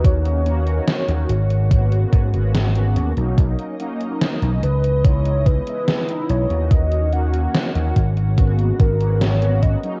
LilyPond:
<<
  \new Staff \with { instrumentName = "Soft synth lead" } { \time 4/4 \key gis \minor \tempo 4 = 72 cis''2. r4 | r4. b'8 cis''8 b'4 cis''8 | dis''8 fis''4 r4 ais'8 cis''8 dis''8 | }
  \new Staff \with { instrumentName = "Analog polysynth" } { \time 4/4 \key gis \minor <ais cis' dis' fis'>8 <ais cis' dis' fis'>8. <ais cis' dis' fis'>16 r8 <ais b cis' fis'>8. <ais b cis' fis'>8 <ais b cis' fis'>8 <fis ais cis' dis'>16~ | <fis ais cis' dis'>8 <fis ais cis' dis'>8. <fis ais cis' dis'>16 r8 <gis b dis' e'>8. <gis b dis' e'>8 <gis b dis' e'>8 <ais cis' dis' fis'>16~ | <ais cis' dis' fis'>8 <ais cis' dis' fis'>8. <ais cis' dis' fis'>16 r8 <ais b cis' fis'>8. <ais b cis' fis'>8 <ais b cis' fis'>8 <fis ais cis' dis'>16 | }
  \new Staff \with { instrumentName = "Analog synth pad" } { \time 4/4 \key gis \minor << { fis'1 | dis''4. e2~ e8 | fis'1 | } \\ { <dis ais cis'>2 gis2 | ais4. cis2~ cis8 | <dis ais cis'>2 gis2 | } >> }
  \new Staff \with { instrumentName = "Slap bass" } { \clef bass \time 4/4 \key gis \minor dis,4 r16 dis,16 gis,,4 gis,16 gis,,8. dis,16 b,,16 | b,,16 r4 b,,16 cis,4~ cis,16 r8. b,,16 dis,16~ | dis,4 r16 dis,16 gis,,4 gis,,4~ gis,,16 r16 | }
  \new DrumStaff \with { instrumentName = "Drums" } \drummode { \time 4/4 <hh bd>16 hh16 hh16 hh16 <hh sn>16 hh16 hh16 hh16 <hh bd>16 hh16 <hh bd>16 hh16 <hh sn>16 hh16 hh16 hh16 | <hh bd>16 hh16 hh16 hh16 <hh sn>16 hh16 hh16 hh16 <hh bd>16 hh16 <hh bd>16 hh16 <hh sn>16 hh16 hh16 hh16 | <hh bd>16 hh16 hh16 hh16 <hh sn>16 hh16 <hh bd>16 hh16 <hh bd>16 hh16 <hh bd>16 hh16 <hh sn>16 hh16 <hh bd>16 hh16 | }
>>